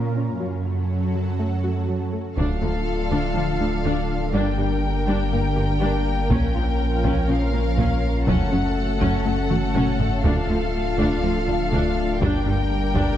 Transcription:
0.00 0.37 A#2 soft
0.00 0.41 A#3 medium
0.00 2.38 C#4 medium
0.00 0.41 F4 medium
0.00 0.40 A#4 medium
0.16 0.31 C#4 soft
0.40 2.14 F#2 soft
0.40 0.55 F#3 medium
0.40 2.37 F#3 medium
0.40 2.37 F#4 medium
0.40 2.36 A4 medium
1.15 1.29 F#3 medium
1.39 1.54 A3 medium
1.64 1.78 F#4 soft
1.88 2.03 F#3 medium
2.13 2.27 A3 soft
2.37 4.36 D1 medium
2.37 2.45 D2 medium
2.37 2.52 D3 medium
2.37 6.27 D3 medium
2.37 4.30 A3 soft
2.37 2.60 D4 soft
2.37 6.27 D4 medium
2.37 4.30 F4 medium
2.37 4.30 A4 medium
2.37 4.30 A4 soft
2.37 4.30 F5 soft
2.37 taiko medium
2.62 2.70 D2 soft
2.62 2.70 F3 soft
2.62 2.77 A3 soft
3.11 3.19 D2 medium
3.11 3.26 D3 medium
3.11 3.34 D4 soft
3.35 3.43 D2 soft
3.35 3.43 F3 soft
3.35 3.50 F3 medium
3.60 3.68 D2 soft
3.60 3.68 A3 soft
3.60 3.75 D4 soft
3.84 3.92 D2 medium
3.84 4.00 D3 medium
3.84 4.08 D4 medium
4.33 6.32 G1 medium
4.33 4.41 G2 medium
4.33 4.49 G3 medium
4.33 8.27 A#3 medium
4.33 6.26 D4 medium
4.33 4.57 D4 medium
4.33 6.31 G4 medium
4.33 8.23 A#4 soft
4.33 8.28 A#4 medium
4.33 7.29 G5 soft
4.58 4.66 G2 soft
4.58 4.66 G3 soft
4.58 4.73 D4 soft
5.07 5.15 G2 medium
5.07 5.22 G3 medium
5.07 5.31 D4 medium
5.32 5.40 G2 soft
5.32 5.40 G3 soft
5.32 5.47 A#3 medium
5.56 5.65 G2 soft
5.56 5.65 A#3 soft
5.56 5.71 G4 medium
5.81 5.89 G2 medium
5.81 5.96 G3 medium
5.81 6.04 D4 medium
6.30 8.29 A#1 medium
6.30 6.38 A#2 medium
6.30 8.28 F3 medium
6.30 6.45 A#3 medium
6.30 6.53 C#4 medium
6.30 10.24 C#4 medium
6.30 10.21 C#4 medium
6.30 8.28 F4 medium
6.30 taiko medium
6.55 6.63 A#2 soft
6.55 6.63 F3 soft
6.55 6.70 F4 soft
7.04 7.12 A#2 medium
7.04 7.19 A#3 medium
7.04 7.28 C#4 medium
7.04 taiko medium
7.28 7.37 A#2 soft
7.28 7.37 F3 soft
7.28 7.43 C#4 medium
7.28 8.28 F5 medium
7.53 7.61 A#2 soft
7.53 7.61 A#3 soft
7.53 7.68 A#4 medium
7.78 7.86 A#2 medium
7.78 7.93 A#3 medium
7.78 8.01 C#4 medium
7.78 taiko medium
8.27 10.26 F#1 medium
8.27 8.36 F#2 medium
8.27 8.42 F#3 medium
8.27 12.17 A3 medium
8.27 12.21 A3 medium
8.27 8.50 C#4 medium
8.27 10.24 F#4 medium
8.27 12.17 A4 medium
8.27 12.21 A4 medium
8.27 10.20 F#5 soft
8.27 taiko medium
8.52 8.60 F#2 soft
8.52 8.60 F#3 soft
8.52 8.67 C#4 soft
9.00 9.09 F#2 medium
9.00 9.16 F#3 medium
9.00 9.24 C#4 medium
9.00 taiko medium
9.25 9.34 F#2 soft
9.25 9.34 F#3 soft
9.25 9.40 A3 medium
9.50 9.58 F#2 soft
9.50 9.58 A3 medium
9.50 9.65 F#4 medium
9.50 taiko mid medium
9.74 9.82 F#2 medium
9.74 9.90 F#3 medium
9.74 9.98 C#4 medium
9.74 taiko low-mid medium
9.99 taiko low medium
10.24 12.23 D1 medium
10.24 10.32 D2 medium
10.24 10.39 D3 medium
10.24 10.47 D4 medium
10.24 13.17 D4 medium
10.24 12.22 F4 medium
10.24 12.17 F5 medium
10.24 taiko medium
10.49 10.57 D2 soft
10.49 10.57 F3 medium
10.49 10.64 A3 medium
10.98 11.06 D2 medium
10.98 11.13 D3 medium
10.98 11.21 D4 medium
10.98 taiko medium
11.23 11.31 D2 soft
11.23 11.38 F3 medium
11.23 11.31 F3 soft
11.47 11.55 D2 soft
11.47 11.56 A3 soft
11.47 11.63 D4 soft
11.72 11.80 D2 medium
11.72 11.87 D3 medium
11.72 11.95 D4 medium
11.72 taiko medium
12.21 13.17 G1 medium
12.21 12.29 G2 medium
12.21 12.36 G3 medium
12.21 13.17 G3 medium
12.21 13.17 A#3 medium
12.21 13.17 D4 medium
12.21 12.44 D4 medium
12.21 13.17 G4 medium
12.21 13.17 A#4 medium
12.21 13.17 G5 medium
12.21 taiko medium
12.46 12.54 G2 soft
12.46 12.54 G3 soft
12.46 12.61 D4 medium
12.94 13.02 G2 medium
12.94 13.10 G3 medium
12.94 13.17 D4 medium
12.94 taiko medium

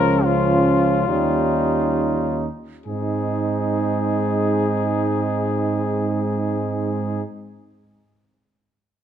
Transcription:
0.00 1.05 C#2 soft
0.00 0.22 F3 soft
0.00 0.22 C#4 soft
0.00 0.22 F4 soft
0.00 0.26 A#4 medium
0.22 1.10 F3 soft
0.22 1.07 C#4 soft
0.22 1.07 F4 soft
0.22 2.41 F4 medium
1.08 2.47 D#2 soft
1.08 2.50 G3 soft
1.08 2.47 C#4 soft
1.08 2.47 D#4 soft
2.86 7.23 G#2 soft
2.86 7.23 G#3 soft
2.86 7.23 C4 soft
2.86 7.23 D#4 soft
2.86 7.23 G#4 soft

